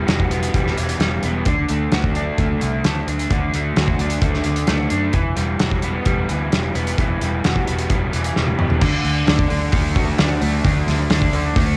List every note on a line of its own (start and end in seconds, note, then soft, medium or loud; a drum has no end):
0.00 0.76 E3 medium
0.00 0.52 G3 medium
0.00 0.30 B3 medium
0.07 0.27 E1 medium
0.07 1.93 F#4 medium
0.07 snare loud
0.07 closed hi-hat medium
0.20 kick medium
0.30 0.49 E1 medium
0.30 1.23 B3 medium
0.30 closed hi-hat medium
0.43 closed hi-hat medium
0.53 0.73 E1 medium
0.53 1.00 G3 medium
0.53 kick loud
0.53 closed hi-hat medium
0.67 snare soft
0.77 0.96 E1 medium
0.77 1.46 E3 medium
0.77 closed hi-hat medium
0.89 closed hi-hat medium
0.99 1.18 E1 medium
0.99 1.47 G3 medium
0.99 snare loud
0.99 closed hi-hat medium
1.23 1.42 E1 medium
1.23 1.47 B3 medium
1.23 closed hi-hat medium
1.45 1.65 D2 medium
1.45 2.60 D3 medium
1.45 kick loud
1.45 closed hi-hat medium
1.69 1.88 D2 medium
1.69 2.38 A3 medium
1.69 closed hi-hat medium
1.92 2.29 D2 medium
1.92 3.77 F#4 medium
1.92 snare medium
1.92 closed hi-hat medium
2.04 kick medium
2.15 3.08 D4 medium
2.15 closed hi-hat medium
2.38 2.57 D2 medium
2.38 2.84 A3 medium
2.38 kick loud
2.38 closed hi-hat medium
2.61 2.81 C2 medium
2.61 3.31 D3 medium
2.61 closed hi-hat medium
2.84 3.03 D2 medium
2.84 3.54 A3 medium
2.84 snare loud
2.84 closed hi-hat medium
3.07 3.26 D2 medium
3.07 4.00 D4 medium
3.07 closed hi-hat medium
3.19 closed hi-hat medium
3.30 3.49 D2 medium
3.30 4.44 D3 medium
3.30 kick loud
3.30 closed hi-hat medium
3.53 3.72 D2 medium
3.53 4.21 A3 medium
3.53 closed hi-hat medium
3.76 3.95 D2 medium
3.76 5.17 F#4 medium
3.76 snare loud
3.76 closed hi-hat medium
3.88 kick medium
3.99 4.18 D2 medium
3.99 4.89 D4 medium
3.99 closed hi-hat medium
4.10 closed hi-hat medium
4.21 4.41 D2 medium
4.21 4.67 A3 medium
4.21 kick loud
4.21 closed hi-hat medium
4.34 snare soft
4.44 4.64 D2 medium
4.44 5.13 D3 medium
4.44 closed hi-hat medium
4.56 closed hi-hat medium
4.67 4.87 D2 medium
4.67 5.14 A3 medium
4.67 snare loud
4.67 closed hi-hat medium
4.90 5.10 F#2 medium
4.90 5.14 D4 medium
4.90 closed hi-hat medium
5.13 5.32 E1 medium
5.13 6.28 E3 medium
5.13 kick loud
5.13 closed hi-hat medium
5.36 5.56 E1 medium
5.36 6.05 G3 medium
5.36 closed hi-hat medium
5.59 5.98 E1 medium
5.59 7.02 F#4 medium
5.59 snare loud
5.59 closed hi-hat medium
5.71 kick medium
5.82 6.74 B3 medium
5.82 closed hi-hat medium
6.05 6.25 E1 medium
6.05 6.51 G3 medium
6.05 kick loud
6.05 closed hi-hat medium
6.29 6.49 D2 medium
6.29 6.97 E3 medium
6.29 closed hi-hat medium
6.52 6.71 E1 medium
6.52 7.21 G3 medium
6.52 snare loud
6.52 closed hi-hat medium
6.75 6.94 E1 medium
6.75 7.67 B3 medium
6.75 closed hi-hat medium
6.87 closed hi-hat medium
6.98 7.17 E1 medium
6.98 8.12 E3 medium
6.98 kick loud
6.98 closed hi-hat medium
7.21 7.40 E1 medium
7.21 7.90 G3 medium
7.21 closed hi-hat medium
7.44 7.64 E1 medium
7.44 8.59 F#4 medium
7.44 snare loud
7.44 closed hi-hat medium
7.56 kick medium
7.67 7.87 E1 medium
7.67 8.56 B3 medium
7.67 closed hi-hat medium
7.78 closed hi-hat medium
7.90 8.09 E1 medium
7.90 8.35 G3 medium
7.90 kick loud
7.90 closed hi-hat medium
8.13 8.32 E1 medium
8.13 8.81 E3 medium
8.13 closed hi-hat medium
8.24 closed hi-hat medium
8.36 8.55 E1 medium
8.36 8.82 G3 medium
8.36 snare medium
8.47 high tom medium
8.58 8.81 E1 medium
8.58 8.81 B3 medium
8.58 mid tom medium
8.70 floor tom medium
8.81 9.02 D2 medium
8.81 9.48 D3 medium
8.81 kick loud
8.81 crash loud
9.04 9.24 D2 medium
9.04 open hi-hat medium
9.26 9.47 D2 medium
9.26 10.17 D4 medium
9.26 snare loud
9.26 open hi-hat medium
9.39 kick loud
9.49 9.71 D2 medium
9.49 10.63 D3 medium
9.49 open hi-hat medium
9.72 10.13 D2 loud
9.72 10.40 A3 medium
9.72 kick loud
9.72 open hi-hat medium
9.96 11.77 F#4 medium
9.96 kick medium
9.96 open hi-hat medium
10.18 10.40 D2 medium
10.18 11.10 D4 medium
10.18 snare loud
10.18 open hi-hat medium
10.42 10.62 D2 medium
10.42 11.56 A3 medium
10.42 open hi-hat medium
10.64 10.85 D2 medium
10.64 11.33 D3 medium
10.64 kick loud
10.64 open hi-hat medium
10.87 11.07 D2 medium
10.87 snare soft
10.87 open hi-hat medium
11.10 11.31 D2 medium
11.10 11.77 D4 medium
11.10 snare loud
11.10 open hi-hat medium
11.22 kick medium
11.32 11.53 D2 medium
11.32 11.77 D3 medium
11.32 open hi-hat medium
11.56 11.77 D2 medium
11.56 11.77 A3 medium
11.56 kick loud
11.56 open hi-hat medium